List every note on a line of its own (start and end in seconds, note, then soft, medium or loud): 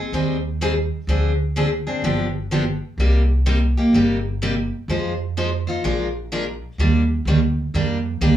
0.00 0.13 C4 soft
0.00 0.13 D#4 soft
0.00 0.12 G#4 soft
0.12 0.89 D#2 medium
0.12 0.36 D#3 medium
0.12 0.36 G3 medium
0.12 0.36 C4 medium
0.12 0.36 D#4 medium
0.12 0.36 G#4 medium
0.61 0.73 D#3 medium
0.61 0.73 G3 medium
0.61 0.73 C4 medium
0.61 0.73 D#4 medium
0.61 0.73 G#4 medium
1.07 1.84 D2 medium
1.07 1.31 D3 medium
1.07 1.31 F3 medium
1.07 1.31 C4 medium
1.07 1.31 D4 medium
1.07 1.31 G#4 medium
1.56 1.68 D3 medium
1.56 1.68 F3 medium
1.56 1.68 C4 medium
1.56 1.68 D4 medium
1.56 1.68 G#4 medium
1.87 2.03 C4 soft
1.87 2.03 D4 soft
1.87 2.03 G#4 medium
2.02 2.79 G1 medium
2.02 2.26 D3 medium
2.02 2.26 F3 medium
2.02 2.26 B3 medium
2.02 2.26 D4 medium
2.02 2.26 G4 medium
2.51 2.63 D3 medium
2.51 2.63 F3 medium
2.51 2.63 B3 medium
2.51 2.63 D4 medium
2.51 2.63 G4 medium
2.98 3.74 C2 medium
2.98 3.21 C3 medium
2.98 3.21 G3 medium
2.98 3.22 A#3 medium
2.98 3.21 D#4 medium
2.98 3.22 G4 medium
3.46 3.58 C3 medium
3.46 3.58 G3 medium
3.46 3.58 A#3 medium
3.46 3.58 D#4 medium
3.46 3.58 G4 medium
3.77 3.94 A#3 soft
3.77 3.94 D#4 soft
3.77 3.93 G4 medium
3.93 4.69 G1 medium
3.93 4.16 C3 medium
3.93 4.16 G3 medium
3.93 4.17 A#3 medium
3.93 4.17 D#4 medium
3.93 4.17 G4 medium
4.42 4.53 C3 medium
4.42 4.54 G3 medium
4.42 4.54 A#3 medium
4.42 4.54 D#4 medium
4.42 4.54 G4 medium
4.88 5.65 F2 medium
4.88 5.11 F3 medium
4.88 5.11 G#3 medium
4.88 5.12 D#4 medium
4.88 5.12 F4 medium
4.88 5.12 C5 medium
5.37 5.49 F3 medium
5.37 5.49 G#3 medium
5.37 5.49 D#4 medium
5.37 5.49 F4 medium
5.37 5.49 C5 medium
5.67 5.84 D#4 soft
5.67 5.84 F4 soft
5.67 5.83 C5 medium
5.84 6.60 A#1 medium
5.84 6.06 F3 medium
5.84 6.06 G#3 medium
5.84 6.07 D4 medium
5.84 6.07 F4 medium
5.84 6.07 A#4 medium
6.32 6.44 F3 medium
6.32 6.44 G#3 medium
6.32 6.44 D4 medium
6.32 6.44 F4 medium
6.32 6.44 A#4 medium
6.78 7.25 D#2 medium
6.78 7.02 D#3 medium
6.78 7.02 G3 medium
6.78 7.02 A#3 medium
6.78 7.02 D4 medium
6.78 7.02 G4 medium
7.25 7.72 D2 medium
7.25 7.39 D#3 medium
7.25 7.39 G3 medium
7.25 7.39 A#3 medium
7.25 7.39 D4 medium
7.25 7.39 G4 medium
7.74 8.20 F2 medium
7.74 7.97 D#3 medium
7.74 7.97 G3 medium
7.74 7.97 A#3 medium
7.74 7.97 D4 medium
7.74 7.97 G4 medium
8.21 8.37 D2 medium
8.21 8.33 D#3 medium
8.21 8.33 G3 medium
8.21 8.34 A#3 medium
8.21 8.34 D4 medium
8.21 8.34 G4 medium